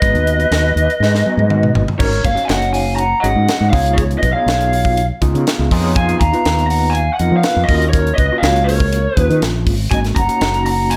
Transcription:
Already playing: B4 D#5
0.02 G#1 B3 D#4 F#4 B4, kick, closed hi-hat
0.14 D#2, closed hi-hat
0.27 closed hi-hat
0.40 closed hi-hat
0.51 D#2, snare, closed hi-hat
0.76 D#2, closed hi-hat
0.90 closed hi-hat
1.00 G#2, snare
1.15 snare
1.25 B3 D#4 F#4 B4 G#5, high tom
1.37 G#2, high tom
1.50 F#5, mid tom
1.63 mid tom
1.73 G#1 D#5, floor tom
1.88 floor tom
1.98 G#1 C#4 D#4 F#4 A#4 C#5, kick, crash
2.02 A#4
2.13 closed hi-hat
2.25 F#1 C#5 F5, kick, closed hi-hat
2.35 C#4 D#4 F#4 C#5, closed hi-hat
2.45 F5 F#5 G#5
2.49 F#1 D#5, snare, closed hi-hat
2.62 closed hi-hat
2.73 F5 G#5, open hi-hat
2.96 F#5 A#5, closed hi-hat
3.20 G#1 C#4 D#4 F#4 G#4 D#5 F#5, closed hi-hat
3.36 G#2
3.49 snare, closed hi-hat
3.61 G#2
3.70 C#2 B3 D#4 F4 G#4 C#5 F5, kick, open hi-hat
3.86 closed hi-hat
3.93 G#4 C#5
3.98 kick, closed hi-hat
4.11 closed hi-hat
4.19 B4 D#5
4.23 B1, kick, closed hi-hat
4.33 B3 D#4 F4 G#4 C#5 F5
4.46 B1, snare, closed hi-hat
4.61 closed hi-hat
4.73 open hi-hat
4.85 kick
4.97 closed hi-hat
5.22 C#2 B3 D#4 F4 G#4, kick, closed hi-hat
5.34 C#3, closed hi-hat
5.47 F5, snare, closed hi-hat
5.59 C#2
5.71 F2 B3 D#4 F4 G#4 C#5, kick, open hi-hat
5.96 F5 G#5, kick, closed hi-hat
6.09 closed hi-hat
6.20 D#2 F5 A#5, kick, closed hi-hat
6.33 B3 D#4 F4 B4, closed hi-hat
6.45 D#2, snare, closed hi-hat
6.59 closed hi-hat
6.67 F#5 A#5, open hi-hat
6.90 G#5
6.94 F5, closed hi-hat
7.14 F#5
7.18 F2 B3 D#4 F4 A#4 D#5, closed hi-hat
7.32 F3
7.37 F5
7.41 B4, snare, closed hi-hat
7.56 F2
7.64 A#4 D#5
7.69 D#2 A#3 C#4 F4 F#4, kick, open hi-hat
7.82 closed hi-hat
7.89 A#4 C#5
7.93 kick, closed hi-hat
8.07 closed hi-hat
8.15 C#2 B4 D#5, kick, closed hi-hat
8.32 A#3 C#4 F4 F#4
8.38 C#5 F5
8.42 C#2, snare, closed hi-hat
8.56 closed hi-hat
8.64 A#4 C#5
8.69 open hi-hat
8.80 kick
8.93 closed hi-hat
9.16 D#2 A#3 C#4 F4 G#4 B4, kick, closed hi-hat
9.30 D#3, closed hi-hat
9.42 A#1, snare, closed hi-hat
9.67 G#1, kick, open hi-hat
9.90 G#1 A#3 C#4 D#4 F#4 D#5 G#5, kick, closed hi-hat
10.04 snare, closed hi-hat
10.16 F#1 F#5 A#5, kick, closed hi-hat
10.28 A#3 C#4 D#4 F#4, closed hi-hat
10.41 F#1, snare, closed hi-hat
10.54 closed hi-hat
10.66 F#5 A#5, open hi-hat
10.90 D#5 G#5, closed hi-hat

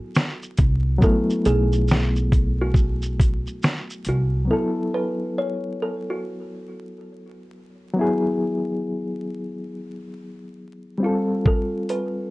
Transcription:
Already playing: F#3 B3 E4 F#4 A4
0.15 snare, shaker
0.42 shaker
0.57 C2, kick, closed hi-hat, shaker
0.98 F#3 B3, kick, shaker
1.04 A3 E4 A4
1.30 shaker
1.45 B1 G#4, closed hi-hat, shaker
1.72 shaker
1.88 snare, shaker
2.16 shaker
2.32 kick, closed hi-hat, shaker
2.62 F#4
2.74 kick, shaker
3.02 shaker
3.20 kick, closed hi-hat, shaker
3.47 shaker
3.63 snare, shaker
3.90 shaker
4.05 C2 F#4, closed hi-hat, shaker
4.45 F#3 B3
4.51 E4 A4
4.94 B4
5.38 C#5
5.82 A4
6.10 F#4
7.94 F#3 B3
7.99 E4 G#4
10.98 G3 C4
11.03 F4 A4
11.46 A4, kick
11.89 B4, closed hi-hat

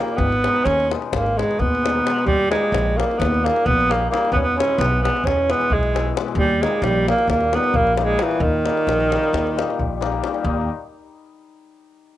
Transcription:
Already playing: A#2 D#3 G3 A#3 D#4
0.08 davul high
0.17 G#1 B3, davul low
0.32 davul high
0.44 B2 D#3 G#3 B3 D#4, davul high
0.56 davul high
0.65 D#2 C#4, davul high
0.80 davul high
0.90 B2 D#3 G#3 B3 D#4, davul high
1.02 davul high
1.11 G#1 A#3, davul high, davul low
1.26 davul high
1.37 B2 D#3 G#3 B3 D#4, davul high
1.51 davul high
1.59 D#2 B3, davul low
1.75 davul high
1.82 B2 D#3 G#3 B3 D#4, davul high
2.05 B2 D#3 G#3 B3 D#4, davul high
2.19 davul high
2.26 D#2 G3, davul low
2.50 A#2 D#3 G3 G#3 A#3 D#4, davul high
2.72 A#1, davul high
2.96 A#2 D#3 G3 A#3 D#4, davul high
3.11 davul high
3.18 D#2 B3, davul high, davul low
3.34 davul high
3.43 A#2 D#3 G3 A#3 D#4, davul high
3.56 davul high
3.65 A#1 B3, davul low
3.81 davul high
3.88 A#2 D#3 G3 A#3 D#4, davul high
4.10 A#2 D#3 G3 A#3 D#4, davul high
4.25 davul high
4.32 E2 B3 C#4, davul low
4.43 B3
4.56 B2 E3 G#3 B3 C#4 E4
4.60 davul high
4.78 B1 B3, davul high
5.01 B2 E3 G#3 B3 E4
5.05 davul high
5.17 davul high
5.24 E2 C#4, davul high, davul low
5.49 B2 E3 G#3 B3 E4, davul high
5.61 davul high
5.70 B1 G#3, davul low
5.83 davul high
5.94 B2 E3 G#3 B3 E4, davul high
6.16 B2 E3 G#3 B3 E4, davul high
6.28 davul high
6.35 D#2 G3, davul low
6.62 A#2 D#3 G3 G#3 A#3 D#4, davul high
6.82 A#1 G3, davul high
7.07 A#2 D#3 G3 A#3 D#4, davul high
7.19 davul high
7.27 D#2 A#3, davul high, davul low
7.41 davul high
7.53 A#2 D#3 G3 A#3 B3 D#4, davul high
7.64 davul high
7.74 A#1 A#3, davul low
7.87 davul high
7.94 A#2 D#3 G3 A#3, davul high
7.98 A#3 D#4
8.03 G#3
8.18 A#2 D#3 E3 G3 A#3 D#4, davul high
8.31 davul high
8.40 D#2 D#3, davul low
8.64 A#2 D#3 G3 A#3 D#4, davul high
8.77 davul high
8.87 A#1, davul high
9.01 davul high
9.10 A#2 D#3 G3 A#3 D#4, davul high
9.24 davul high
9.33 D#2, davul high
9.47 davul high
9.55 A#2 D#3 G3 A#3 D#4, davul high
9.70 davul high
9.79 A#1, davul low
10.00 A#2 D#3 G3 A#3 D#4, davul high
10.12 davul high
10.23 A#2 D#3 G3 A#3 D#4, davul high
10.34 davul high
10.44 D#2 D#3 G3 A#3 D#4, davul low

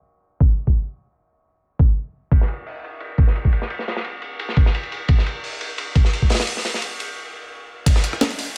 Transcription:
0.40 kick
0.67 kick
1.79 kick
2.32 kick, ride
2.41 snare
2.48 ride
2.67 open hi-hat
2.84 ride
3.00 ride
3.18 kick, ride
3.27 snare
3.36 ride
3.45 kick
3.52 ride
3.62 snare
3.70 ride
3.79 snare
3.88 snare, ride
3.96 snare
4.04 ride
4.22 ride
4.39 ride
4.49 snare
4.57 kick, ride
4.66 snare
4.74 ride
4.83 ride
4.92 ride
5.08 kick, ride
5.18 snare
5.26 ride
5.44 open hi-hat
5.61 ride
5.78 ride
5.95 kick, ride
6.05 snare
6.13 ride
6.22 kick
6.30 snare, open hi-hat
6.34 snare, open hi-hat
6.39 snare, open hi-hat
6.47 ride
6.57 snare
6.65 snare, ride
6.74 snare
6.82 ride
7.00 ride
7.86 kick, closed hi-hat, ride, crash
7.96 cross-stick, snare
8.04 closed hi-hat, ride
8.13 cross-stick
8.21 snare, closed hi-hat, open hi-hat
8.30 closed hi-hat
8.39 open hi-hat, ride

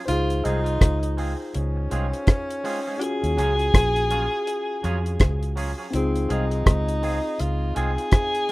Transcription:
0.06 C#2 D#4 F4 C5, closed hi-hat
0.10 F4 G#4
0.30 closed hi-hat
0.44 C2 G#3 C4 D#4 F4 G#4, closed hi-hat
0.66 closed hi-hat
0.81 C#2, kick, cross-stick, closed hi-hat
1.03 closed hi-hat
1.17 G#3 C4 F4 G#4, open hi-hat
1.54 C#2 C#4, closed hi-hat
1.76 muted clean electric guitar stroke
1.91 C2 G#3 C4 F4 G#4, closed hi-hat
2.13 closed hi-hat
2.27 kick, cross-stick, closed hi-hat
2.50 closed hi-hat
2.64 G#3 C4 F4 G#4, open hi-hat
2.86 G#3 C4 F4 G#4
2.98 C#4 F4 G#4, closed hi-hat
3.02 F#4 G#4
3.23 D#2, closed hi-hat
3.37 C#2 F#3 C#4 F4 G#4, closed hi-hat
3.59 closed hi-hat
3.74 A#1, kick, cross-stick, closed hi-hat
3.96 closed hi-hat
4.10 F#3 C#4 F4 G#4, closed hi-hat
4.47 closed hi-hat
4.83 F2 F#3 C#4 F4 G#4, closed hi-hat
5.06 closed hi-hat
5.20 C#2, kick, cross-stick, closed hi-hat
5.43 closed hi-hat
5.56 F#3 C#4 F4 G#4, open hi-hat
5.78 F#3 C#4 F4 G#4
5.91 C#2 C4 D#4, closed hi-hat
5.95 C4 F4 G#4
6.16 closed hi-hat
6.29 C2 G#3 C4 D#4 F4 G#4, closed hi-hat
6.51 closed hi-hat
6.66 C#2, kick, cross-stick, closed hi-hat
6.88 closed hi-hat
7.02 G#3 C4 F4 G#4, open hi-hat
7.39 C#2 F4, closed hi-hat
7.75 C2 G#3 C4 F4 G#4, closed hi-hat
7.98 closed hi-hat
8.12 kick, cross-stick, closed hi-hat
8.35 closed hi-hat
8.49 G#3

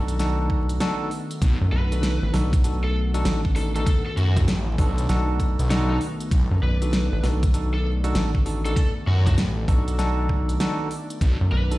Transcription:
Already playing: B1 D#3 A3 B3 D4 D#4 F#4 A4
0.08 closed hi-hat
0.19 D4 D#4 F#4 A4, snare, closed hi-hat
0.50 kick, cross-stick
0.69 closed hi-hat
0.80 D4 D#4 F#4 A4, snare, closed hi-hat
1.11 open hi-hat
1.31 closed hi-hat
1.42 B1, kick, closed hi-hat
1.61 F#2
1.72 B1 B4
1.92 D4 D#4 F#4 A4, closed hi-hat
2.03 snare, closed hi-hat
2.23 A1
2.33 B1 D4 D#4 F#4 A4, snare, open hi-hat
2.53 kick, closed hi-hat
2.64 D4 D#4 F#4 A4, closed hi-hat
2.84 A4
3.14 D4 D#4 F#4 A4, closed hi-hat
3.25 A1, snare, closed hi-hat
3.45 kick
3.56 D4 D#4 F#4 A4, open hi-hat
3.75 D4 D#4 F#4 A4, closed hi-hat
3.86 A4, kick, closed hi-hat
4.06 A4
4.17 F#2 F#4, closed hi-hat
4.37 D4 D#4 F#4 A4, kick, cross-stick, closed hi-hat
4.48 A1, snare, closed hi-hat
4.78 B1 D4 D#4 F#4 A4, kick, open hi-hat
4.98 closed hi-hat
5.09 B1 D4 D#4 F#4 A4, snare, closed hi-hat
5.40 kick, cross-stick, closed hi-hat
5.59 B1, closed hi-hat
5.70 D4 D#4 F#4 A4, snare, closed hi-hat
5.90 D#4
6.01 open hi-hat
6.21 closed hi-hat
6.31 B1 D5, kick, closed hi-hat
6.51 F#2
6.62 B1 B4
6.82 D4 D#4 F#4 A4, closed hi-hat
6.93 snare, closed hi-hat
7.12 A1
7.23 B1 D4 D#4 F#4 A4, snare, open hi-hat
7.43 kick, closed hi-hat
7.54 D4 D#4 F#4 A4, closed hi-hat
7.74 A4
8.04 D4 D#4 F#4 A4, closed hi-hat
8.15 A1, snare, closed hi-hat
8.35 kick
8.46 D4 D#4 F#4 A4, open hi-hat
8.65 D4 D#4 F#4 A4, closed hi-hat
8.76 A4, kick, closed hi-hat
9.07 F#2 F#4
9.27 D4 D#4 F#4 A4, kick, cross-stick, closed hi-hat
9.37 A1, snare, closed hi-hat
9.68 B1 D4 D#4 F#4 A4, kick, open hi-hat
9.88 closed hi-hat
9.99 D4 D#4 F#4 A4, snare, closed hi-hat
10.29 kick, cross-stick
10.49 closed hi-hat
10.60 D4 D#4 F#4 A4, snare, closed hi-hat
10.91 open hi-hat
11.10 closed hi-hat
11.21 B1, kick, closed hi-hat
11.41 F#2
11.52 B1 B4
11.71 D4 D#4 F#4 A4, closed hi-hat

